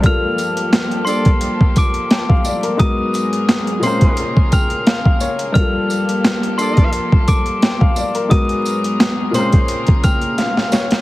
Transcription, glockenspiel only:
X:1
M:4/4
L:1/16
Q:"Swing 16ths" 1/4=87
K:Gm
V:1 name="Glockenspiel"
[f'f'']6 [c'c'']4 [d'd'']3 z3 | [e'e'']6 [c'c'']4 [f'f'']6 | [f'f'']6 [c'c'']4 [d'd'']3 z3 | [e'e'']6 [c'c'']4 [f'f'']6 |]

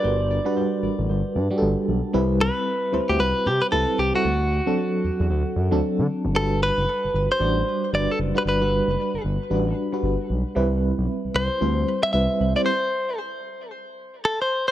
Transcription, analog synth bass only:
X:1
M:4/4
L:1/16
Q:"Swing 16ths" 1/4=114
K:G
V:1 name="Analog synth bass" clef=bass
G,,,3 z3 A,,, A,,, G,,, z G,, z G,,, z B,,, z | C,,3 z3 D,, D,, C,, z C, z C,, z C,, z | D,,3 z3 E,, E,, D,, z F,, D,, z D, z F,,, | G,,,3 F,,, z G,,, G,,, z A,,,2 z2 G,,, z F,,, z |
G,,,3 F,,, z G,,, G,,, z A,,,2 z2 G,,, z B,,, z | C,,3 B,,, z C,, C,, z D,,2 z2 C,, z C,, z | z16 |]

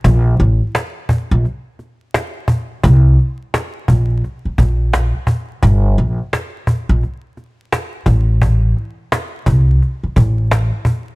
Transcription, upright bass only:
X:1
M:4/4
L:1/16
Q:"Swing 16ths" 1/4=86
K:Gm
V:1 name="Upright bass" clef=bass
B,,,2 A,,, z4 B,,, z8 | C,,2 z4 B,,,2 z2 B,,,3 z3 | G,,,2 B,,, z4 B,,, z6 A,,,2- | A,,,2 z4 C,,2 z2 A,,,3 z3 |]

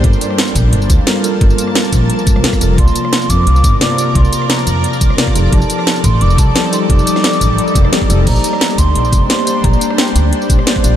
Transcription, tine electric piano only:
X:1
M:4/4
L:1/8
Q:"Swing 16ths" 1/4=175
K:Gm
V:1 name="Tine electric piano"
G,6 [G,FAB] [G,FAB] | [G,FAB]6 [G,FAB] [G,FAB] | [C,B,Fd]6 [C,B,Fd] [C,B,Fd] | [C,B,Fd]6 [C,B,Fd] [F,EGAd] |
[F,EGAd]6 [F,EGAd] [F,EGAd] | [F,EGAd]6 [F,EGAd] [F,EGAd] | [B,Gcd]6 [B,Gcd] [B,Gcd] | [B,Gcd]6 [B,Gcd] [B,Gcd] |]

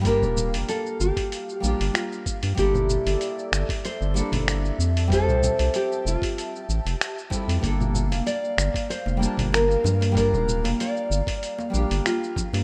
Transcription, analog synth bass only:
X:1
M:4/4
L:1/16
Q:"Swing 16ths" 1/4=95
K:Gdor
V:1 name="Analog synth bass" clef=bass
G,, D,,,2 F,,, z2 G,,, z3 B,,, G,,, z3 G,, | G,,,2 z G,,, z2 G,,, z2 G,,, z G,,,2 z F,,2- | F,, C,, z C,, z2 F,,, z3 A,,, F,,, z3 F,, | G,,,3 F,,, z2 G,,, z2 F,,, z G,,,2 z G,,2- |
G,, D,,,2 F,,, z2 G,,, z3 B,,, G,,, z3 G,, |]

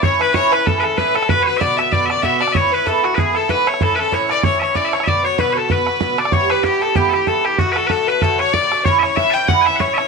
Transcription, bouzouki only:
X:1
M:4/4
L:1/8
Q:"Swing" 1/4=190
K:Bdor
V:1 name="Bouzouki"
[A,,E,CE] [E,CE] [A,,E,CE] [E,CE] [A,,E,CE] [E,CE] [A,,E,CE] [E,CE] | [B,,D,B,F] [D,B,F] [B,,D,B,F] [D,B,F] [B,,D,B,F] [D,B,F] [B,,D,B,F] [D,B,F] | [G,,E,B,E] [E,B,E] [G,,E,B,E] [E,B,E] [G,,E,B,E] [E,B,E] [G,,E,B,E] [E,B,E] | [A,,E,CE] [E,CE] [A,,E,CE] [E,CE] [A,,E,CE] [E,CE] [A,,E,CE] [E,CE] |
[B,,D,B,F] [D,B,F] [B,,D,B,F] [D,B,F] [B,,D,B,F] [D,B,F] [B,,D,B,F] [D,B,F] | [K:Edor] [G,,E,B,G] [E,B,G] [G,,E,B,G] [E,B,G] [G,,E,B,G] [E,B,G] [G,,E,B,G] [E,B,G] | [A,,D,A,F] [D,A,F] [A,,D,A,F] [D,A,F] [A,,D,A,F] [D,A,F] [A,,D,A,F] [D,A,F] | [A,,E,CE] [E,CE] [A,,E,CE] [E,CE] [A,,E,CE] [E,CE] [A,,E,CE] [E,CE] |]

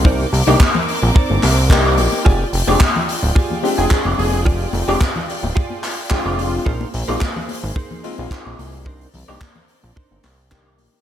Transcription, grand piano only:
X:1
M:4/4
L:1/16
Q:1/4=109
K:Fdor
V:1 name="Grand piano"
z3 [B,DEG] z8 [B,EGd]4 | z3 [A,CDG] z6 [A,CDG] [A,CDg]4- [A,CDg]- | [A,CDg]3 [A,CDG] z8 [A,CDg]4 | z3 [A,CEF] z6 [A,CEF] [A,CEF]4- [A,CEF] |
z3 [B,DEG] z8 [E,B,Gd]4 |]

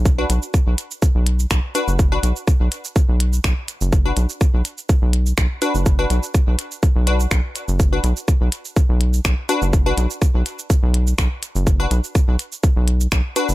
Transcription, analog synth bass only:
X:1
M:4/4
L:1/16
Q:"Swing 16ths" 1/4=124
K:Bm
V:1 name="Analog synth bass" clef=bass
B,,,2 B,,, z2 B,,, z3 B,,,3 B,,, z2 F,,,- | F,,,2 B,,, z2 B,,, z3 B,,,3 B,,, z2 F,,,- | F,,,2 B,,, z2 B,,, z3 B,,,3 B,,, z2 F,,,- | F,,,2 B,,, z2 B,,, z3 B,,,3 B,,, z2 F,,,- |
F,,,2 B,,, z2 B,,, z3 B,,,3 B,,, z2 F,,,- | F,,,2 B,,, z2 B,,, z3 B,,,3 B,,, z2 F,,,- | F,,,2 B,,, z2 B,,, z3 B,,,3 B,,, z2 F,,, |]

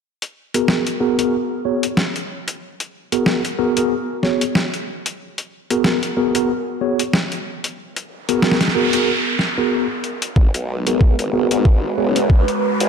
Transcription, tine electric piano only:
X:1
M:4/4
L:1/16
Q:"Swing 16ths" 1/4=93
K:G#m
V:1 name="Tine electric piano"
z3 [B,FGA]2 z [B,FGA] [B,FGA] z2 [B,FGc] z4 z | z3 [B,FGA]2 z [B,FGA] [B,FGA] z2 [B,FGc] z4 z | z3 [B,FGA]2 z [B,FGA] [B,FGA] z2 [B,FGc] z4 z | z3 [B,FGA]2 z [B,FGA] [B,FGA] z3 [B,FGA]2 z3 |
z3 [B,FGA]2 z [B,FGA] [B,FGA] z2 [B,FGc] z4 z |]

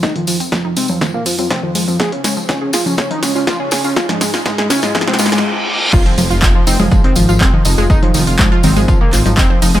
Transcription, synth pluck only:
X:1
M:4/4
L:1/16
Q:1/4=122
K:Fm
V:1 name="Synth pluck"
A, E, F, C F, E A, C E, F, C C F, E, A, C | F, D A, F, F, A A F, D F, A, F F, A A F | D F, A, F A, A D F F, A, F A z4 | [E,E] [Cc] [F,F] [Ff] [E,E] [F,F] [Ee] [A,A] [A,A] [E,E] [F,F] [Ff] [A,A] [E,E] [Ee] [A,A] |
[A,A] [E,E] [E,E] [Ff] [A,A] [Ff] [E,E] [A,A] [Ff] [E,E] [Cc] [E,E] [Ee] [Cc] [Ee] [A,A] |]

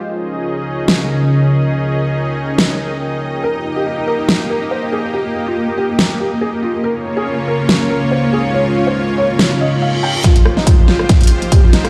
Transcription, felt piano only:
X:1
M:4/4
L:1/16
Q:"Swing 16ths" 1/4=141
K:Fm
V:1 name="Felt piano"
z16 | z16 | B E E G E E B E E E B E c E A E | G B, B, F B, B, G B, B, B, G B, A B, F B, |
B B, B, A B, B, B B, B, B, B B, c B, A B, | d F F c F F d F F F e F f F g F | F F, F, E F, F, F F, F, F, F F, G F, E F, |]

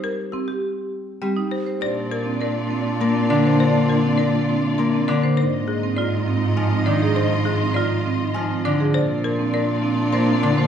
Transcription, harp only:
X:1
M:3/4
L:1/8
Q:1/4=101
K:Cphr
V:1 name="Harp" clef=bass
G,4 G,2 | [K:Bbmix] z4 B, D,- | D,4 B, D, | z4 F, E,- |
E,4 F, D, | z4 B, D, |]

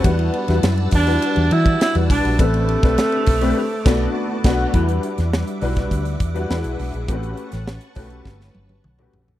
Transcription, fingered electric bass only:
X:1
M:4/4
L:1/16
Q:1/4=102
K:Em
V:1 name="Fingered electric bass" clef=bass
E,,2 z E,, F,,2 E,,2 z E,, E,2 z E,, B,,, ^A,,, | A,,,3 B,,, z2 B,,,2 z2 B,,,2 z2 B,,,2 | E,,2 z E,,2 z B,,,2 D,,2 E,,2 E,, B,,, B,,, ^A,,, | A,,,2 z A,,,2 z B,,,2 G,,,2 G,,,2 B,,,2 ^A,,,2 |]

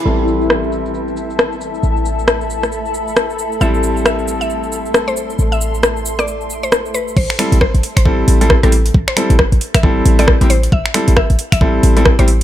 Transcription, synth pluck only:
X:1
M:4/4
L:1/16
Q:"Swing 16ths" 1/4=135
K:Am
V:1 name="Synth pluck"
z16 | z16 | e3 z e2 z e2 z4 c z2 | z e2 z4 d3 z c2 z B z |
c3 z c2 z c2 z4 A z2 | z c2 z4 e3 z d2 z c z | e3 z e2 z e2 z4 c z2 |]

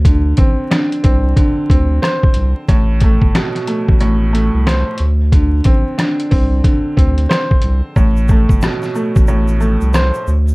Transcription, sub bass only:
X:1
M:4/4
L:1/16
Q:"Swing 16ths" 1/4=91
K:Am
V:1 name="Sub bass" clef=bass
D,,2 A,,, z3 C,,2 z2 D,,2 z2 C,, z | A,,,3 G,,, z3 A,,,4 C,,2 z D,,2- | D,,2 A,,, z3 C,,2 z2 D,,2 z2 C,, z | A,,,3 G,,, z3 A,,,4 C,,2 z D,,2 |]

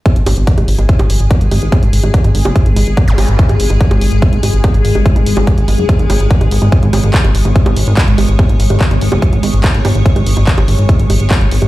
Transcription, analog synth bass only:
X:1
M:4/4
L:1/16
Q:1/4=144
K:none
V:1 name="Analog synth bass" clef=bass
z ^G,,, G,,, G,,, z G,,, G,,, G,,, z G,,, G,,, G,,, z G,,, G,,, G,,, | z ^G,,, G,,, G,,, z G,,, G,,, ^F,,, z G,,, G,,, G,,, z G,,, G,,, G,,, | z ^G,,, G,,, G,,, z G,,, G,,, G,,, z G,,, G,,, G,,, z G,,, G,,, G,,, | z ^G,,, G,,, G,,, z G,,, G,,, ^F,,, z G,,, G,,, G,,, z G,,, G,,, G,,, |
z ^G,,, G,,, G,,, z G,,, G,,, G,,, z G,,, G,,, G,,, z G,,, G,,, G,,, | z ^G,,, G,,, G,,, z G,,, G,,, ^F,,, z G,,, G,,, G,,, z G,,, G,,, G,,, | z ^G,,, G,,, G,,, z G,,, G,,, G,,, z G,,, G,,, G,,, z G,,, G,,, G,,, |]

